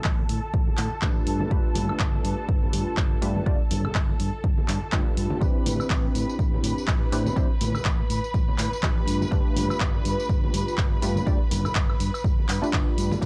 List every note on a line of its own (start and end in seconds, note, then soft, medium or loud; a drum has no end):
0.00 5.43 A4 medium
0.00 5.43 A5 medium
0.04 0.21 A1 loud
0.04 kick loud
0.04 clap loud
0.19 high conga medium
0.29 0.38 A2 medium
0.29 open hi-hat medium
0.29 shaker medium
0.43 shaker medium
0.54 0.67 A1 medium
0.54 kick loud
0.67 muted fingered electric bass stroke soft
0.67 high conga medium
0.77 0.87 A2 medium
0.77 clap medium
0.77 open hi-hat loud
0.77 shaker medium
0.91 muted fingered electric bass stroke soft
0.91 shaker soft
1.02 1.19 A1 medium
1.02 1.49 A3 medium
1.02 1.49 D4 medium
1.02 1.49 F4 medium
1.02 1.49 G4 medium
1.02 1.49 B4 medium
1.02 kick loud
1.02 clap loud
1.02 high conga medium
1.02 shaker soft
1.26 1.43 G2 medium
1.26 open hi-hat medium
1.26 shaker medium
1.40 high conga loud
1.40 shaker soft
1.50 1.60 G1 loud
1.50 3.19 A3 medium
1.50 3.19 D4 medium
1.50 3.19 F4 medium
1.50 3.20 G4 medium
1.50 3.20 B4 loud
1.50 kick loud
1.75 1.89 G2 medium
1.75 open hi-hat loud
1.75 high conga loud
1.75 shaker loud
1.89 muted fingered electric bass stroke soft
1.89 high woodblock medium
1.89 shaker soft
2.00 2.17 G1 loud
2.00 kick loud
2.00 clap loud
2.14 high conga medium
2.24 2.33 G2 medium
2.24 open hi-hat medium
2.24 shaker medium
2.38 shaker medium
2.48 2.65 G1 medium
2.48 kick loud
2.48 shaker soft
2.63 high conga loud
2.73 2.82 G2 medium
2.73 open hi-hat loud
2.73 shaker medium
2.87 muted fingered electric bass stroke soft
2.87 shaker soft
2.97 3.14 G1 medium
2.97 kick loud
2.97 clap loud
2.97 high conga medium
2.97 shaker soft
3.22 3.39 G2 medium
3.22 3.44 A3 medium
3.22 3.44 D4 medium
3.22 3.44 F4 medium
3.22 3.44 G4 medium
3.22 3.44 B4 medium
3.22 open hi-hat loud
3.36 high conga medium
3.36 shaker medium
3.46 3.55 G1 medium
3.46 3.57 A3 loud
3.46 3.57 D4 medium
3.46 3.57 F4 loud
3.46 3.57 G4 medium
3.46 3.57 D5 loud
3.46 kick loud
3.70 3.84 G2 medium
3.70 open hi-hat loud
3.70 high conga medium
3.70 shaker medium
3.84 muted fingered electric bass stroke soft
3.84 low conga medium
3.84 high woodblock medium
3.84 shaker soft
3.94 4.12 G1 loud
3.94 kick loud
3.94 clap loud
3.94 shaker soft
4.09 high conga medium
4.20 4.28 G2 medium
4.20 open hi-hat medium
4.20 shaker medium
4.33 shaker medium
4.44 4.57 G1 medium
4.44 kick loud
4.58 muted fingered electric bass stroke soft
4.58 high conga medium
4.68 4.77 G2 medium
4.68 clap medium
4.68 open hi-hat loud
4.68 shaker medium
4.82 muted fingered electric bass stroke soft
4.82 shaker soft
4.92 5.01 G1 medium
4.92 5.39 A3 medium
4.92 5.39 D4 medium
4.92 5.39 F4 medium
4.92 5.39 G4 medium
4.92 5.39 B4 medium
4.92 kick loud
4.92 clap loud
4.92 high conga medium
4.92 shaker soft
5.17 5.26 G2 medium
5.17 open hi-hat loud
5.17 shaker medium
5.30 high conga loud
5.30 shaker soft
5.41 5.50 A1 loud
5.41 7.09 C4 medium
5.41 7.09 D4 medium
5.41 7.10 E4 medium
5.41 7.10 G4 medium
5.41 13.21 B4 medium
5.41 7.10 B4 loud
5.41 13.21 B5 medium
5.41 kick loud
5.41 tambourine soft
5.41 shaker soft
5.66 5.79 A2 medium
5.66 open hi-hat loud
5.66 tambourine medium
5.66 high conga loud
5.66 shaker medium
5.80 muted fingered electric bass stroke soft
5.80 tambourine soft
5.80 high woodblock medium
5.80 shaker medium
5.90 6.07 A1 medium
5.90 kick loud
5.90 clap loud
5.90 tambourine soft
6.05 high conga medium
6.15 6.23 A2 medium
6.15 open hi-hat medium
6.15 tambourine medium
6.15 shaker medium
6.29 tambourine soft
6.39 6.56 A1 medium
6.39 kick loud
6.39 tambourine soft
6.54 high conga medium
6.63 6.72 A2 medium
6.63 open hi-hat loud
6.63 tambourine medium
6.63 shaker medium
6.77 muted fingered electric bass stroke soft
6.77 tambourine soft
6.77 shaker soft
6.87 7.04 A1 medium
6.87 kick loud
6.87 clap loud
6.87 high conga medium
6.87 shaker soft
7.12 7.29 A2 medium
7.12 7.34 C4 medium
7.12 7.34 D4 medium
7.12 7.34 E4 medium
7.12 7.34 G4 medium
7.12 7.34 B4 medium
7.12 open hi-hat loud
7.12 tambourine medium
7.26 tambourine soft
7.26 high conga loud
7.26 shaker medium
7.36 7.45 A1 loud
7.36 7.47 C4 loud
7.36 7.47 D4 medium
7.36 7.47 E4 medium
7.36 7.47 G4 medium
7.36 7.47 C5 loud
7.36 kick loud
7.36 tambourine soft
7.36 shaker soft
7.61 7.74 A2 medium
7.61 open hi-hat loud
7.61 tambourine medium
7.61 high conga medium
7.61 shaker medium
7.74 muted fingered electric bass stroke soft
7.74 tambourine soft
7.74 low conga medium
7.74 high woodblock medium
7.74 shaker soft
7.85 8.02 A1 loud
7.85 kick loud
7.85 clap loud
7.98 high conga medium
8.09 8.19 A2 medium
8.09 open hi-hat medium
8.09 tambourine medium
8.09 shaker medium
8.24 tambourine soft
8.24 shaker soft
8.34 8.47 A1 medium
8.34 kick loud
8.34 tambourine soft
8.48 muted fingered electric bass stroke soft
8.48 high conga medium
8.58 8.67 A2 medium
8.58 clap medium
8.58 open hi-hat loud
8.58 tambourine medium
8.58 shaker medium
8.72 muted fingered electric bass stroke soft
8.72 tambourine soft
8.72 shaker soft
8.83 8.99 A1 medium
8.83 9.29 A3 medium
8.83 9.29 D4 medium
8.83 9.29 F4 medium
8.83 9.29 G4 medium
8.83 9.30 B4 medium
8.83 kick loud
8.83 clap loud
8.83 high conga medium
8.83 shaker soft
9.07 9.24 G2 medium
9.07 open hi-hat loud
9.07 tambourine medium
9.07 shaker medium
9.21 tambourine soft
9.21 high conga medium
9.21 shaker medium
9.31 9.40 G1 loud
9.31 11.00 A3 medium
9.31 11.00 D4 medium
9.31 11.00 F4 medium
9.31 11.00 G4 medium
9.31 11.00 B4 medium
9.31 kick loud
9.31 shaker soft
9.55 9.69 G2 medium
9.55 open hi-hat medium
9.55 tambourine medium
9.55 high conga medium
9.55 shaker medium
9.70 muted fingered electric bass stroke soft
9.70 tambourine soft
9.70 high woodblock medium
9.70 shaker soft
9.80 9.97 G1 loud
9.80 kick loud
9.80 clap loud
9.80 tambourine soft
9.94 high conga medium
10.05 10.14 G2 loud
10.05 open hi-hat medium
10.05 tambourine medium
10.05 shaker medium
10.20 tambourine soft
10.20 shaker medium
10.29 10.46 G1 medium
10.29 kick loud
10.29 tambourine soft
10.44 high conga medium
10.54 10.62 G2 medium
10.54 open hi-hat loud
10.54 tambourine medium
10.54 shaker loud
10.67 muted fingered electric bass stroke soft
10.67 tambourine soft
10.67 shaker soft
10.78 10.95 G1 medium
10.78 kick loud
10.78 clap loud
10.78 tambourine soft
10.78 high conga medium
10.78 shaker soft
11.02 11.19 G2 medium
11.02 11.24 A3 medium
11.02 11.24 D4 medium
11.02 11.24 F4 medium
11.02 11.24 G4 medium
11.02 11.24 B4 medium
11.02 open hi-hat loud
11.02 tambourine medium
11.02 shaker loud
11.16 tambourine soft
11.16 high conga medium
11.16 shaker medium
11.26 11.36 G1 loud
11.26 11.37 A3 loud
11.26 11.37 D4 loud
11.26 11.38 F4 medium
11.26 11.38 G4 medium
11.26 11.38 D5 loud
11.26 kick loud
11.26 tambourine soft
11.26 shaker soft
11.51 11.65 G2 medium
11.51 open hi-hat loud
11.51 tambourine medium
11.51 high conga medium
11.51 shaker medium
11.65 muted fingered electric bass stroke soft
11.65 tambourine soft
11.65 low conga medium
11.65 high woodblock medium
11.65 shaker medium
11.75 11.92 G1 loud
11.75 kick loud
11.75 clap loud
11.75 tambourine soft
11.89 high conga medium
11.89 high woodblock medium
11.99 12.09 G2 medium
11.99 open hi-hat medium
11.99 tambourine medium
11.99 shaker medium
12.14 tambourine soft
12.14 high woodblock medium
12.14 shaker medium
12.24 12.38 G1 medium
12.24 kick loud
12.38 muted fingered electric bass stroke soft
12.38 high conga medium
12.49 12.57 G2 medium
12.49 clap medium
12.49 open hi-hat loud
12.49 tambourine medium
12.49 shaker loud
12.62 13.19 A3 medium
12.62 13.19 D4 medium
12.62 13.19 F4 medium
12.62 13.20 G4 medium
12.62 13.20 B4 medium
12.62 muted fingered electric bass stroke soft
12.62 tambourine soft
12.62 shaker medium
12.73 12.82 G1 loud
12.73 kick loud
12.73 clap loud
12.73 high conga medium
12.73 shaker soft
12.98 13.14 G2 loud
12.98 open hi-hat medium
12.98 tambourine medium
12.98 shaker medium
13.11 tambourine soft
13.11 high conga loud
13.11 shaker medium
13.21 13.26 A1 loud
13.21 13.26 C4 medium
13.21 13.26 D4 medium
13.21 13.26 E4 medium
13.21 13.26 G4 medium
13.21 13.26 B4 medium
13.21 13.26 B5 medium
13.21 kick loud
13.21 crash loud